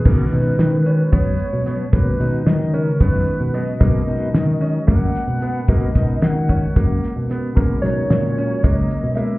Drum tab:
CC |x------|-------|-------|-------|
HH |-xxxxxx|xxxxxxx|xxxxxxx|xxxxxxx|
SD |--o---o|--o----|--o--o-|-oo--oo|
BD |o---o--|o---o--|o---o--|oo-oo--|

CC |-------|
HH |xxxxxxx|
SD |-oo----|
BD |o---o--|